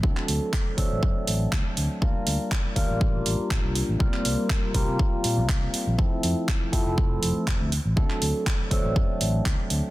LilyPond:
<<
  \new Staff \with { instrumentName = "Tine electric piano" } { \time 4/4 \key d \minor \tempo 4 = 121 <fis a c' d' a'>4. <fis a c' d' a'>2~ <fis a c' d' a'>8 | <g bes d' f' bes'>4. <g bes d' f' bes'>2~ <g bes d' f' bes'>8 | <g bes c' f' bes'>4. <g bes c' f' bes'>2~ <g bes c' f' bes'>8 | <f a c' e' a'>4. <f a c' e' a'>2 r8 |
<fis a c' d' a'>4. <fis a c' d' a'>2~ <fis a c' d' a'>8 | }
  \new Staff \with { instrumentName = "Fingered electric bass" } { \clef bass \time 4/4 \key d \minor r8 d,16 r8. d,16 a,,16 r8 a,,16 r16 d,16 r16 d,16 r16 | d,16 r16 d,16 r8. d,16 a,,8. a,,16 r16 a,,16 c,16 r16 a,,16 | c,16 r16 c,16 r8. c,16 c16 r8 bes,16 c,8. r16 bes,,16 | r8 f,16 r8. f,16 f,,8. f,,16 r16 f,,16 d,16 r16 a,,16 |
r8 d,16 r8. d,16 a,,16 fis,16 r16 a,,16 r16 d,16 r16 d,16 r16 | }
  \new DrumStaff \with { instrumentName = "Drums" } \drummode { \time 4/4 bd16 hc16 hho8 <hc bd>8 <hho bd>8 bd8 hho8 <hc bd>8 hho8 | bd8 hho8 <hc bd>8 <hho bd>8 bd8 hho8 <hc bd>8 hho8 | bd16 hc16 hho8 <hc bd>8 <hho bd>8 bd8 hho8 <hc bd>8 hho8 | bd8 hho8 <hc bd>8 <hho bd>8 bd8 hho8 <hc bd>8 hho8 |
bd16 hc16 hho8 <hc bd>8 <hho bd>8 bd8 hho8 <hc bd>8 hho8 | }
>>